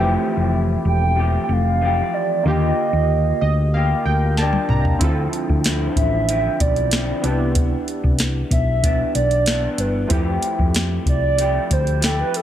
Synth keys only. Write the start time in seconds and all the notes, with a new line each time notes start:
Already playing: E3 A3 C4 G4
2.43 D3 A#3 F4
2.48 G4
3.41 D#5
3.74 F5
4.05 G5
4.38 A5
4.70 A#5
4.99 C4 E4 F4
5.04 A4
7.21 B3 D4 E4
7.26 G4
10.07 A3 C4 E4
10.12 G4